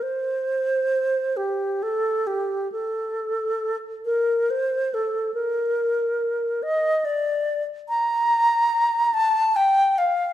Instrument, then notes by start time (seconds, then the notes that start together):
alto flute
0.02 C5
1.37 G4
1.83 A4
2.27 G4
2.72 A4
4.05 A#4
4.50 C5
4.94 A4
5.34 A#4
6.63 D#5
7.05 D5
7.89 A#5
9.14 A5
9.56 G5
9.98 F5